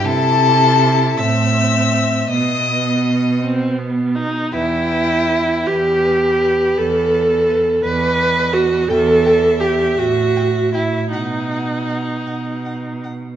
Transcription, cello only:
X:1
M:6/8
L:1/8
Q:3/8=54
K:Em
V:1 name="Cello" clef=bass
C,3 A,,3 | B,,4- B,, z | E,,3 E,,3 | E,,3 E,,3 |
E,,3 A,,3 | B,,3 B,,3 |]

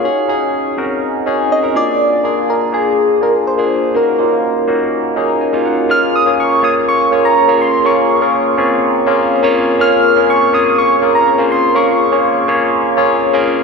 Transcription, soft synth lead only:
X:1
M:4/4
L:1/16
Q:1/4=123
K:Bbm
V:1 name="Soft synth lead"
d8 z4 e2 =d2- | =d4 B2 A4 B2 c4 | B12- B2 z2 | f'2 e'2 d'2 e'2 d'3 b3 c'2 |
d'12 z4 | f'4 d'2 e'2 d'3 b3 c'2 | d'12 z4 |]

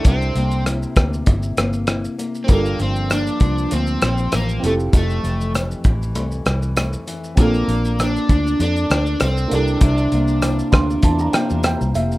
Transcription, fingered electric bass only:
X:1
M:4/4
L:1/16
Q:"Swing 16ths" 1/4=98
K:Cmix
V:1 name="Fingered electric bass" clef=bass
C,,2 C,,4 D,,2 G,,,2 G,,,4 z2 | G,,,2 G,,,4 C,,2 D,,2 B,,,2 A,,,2 F,,,2 | F,,,2 F,,,4 A,,,2 C,,2 C,,4 z2 | B,,,2 B,,,4 D,,2 F,,2 D,,2 C,,2 C,,2 |
C,,2 C,,4 D,,2 E,,2 z E,,2 C,, F,,,2 |]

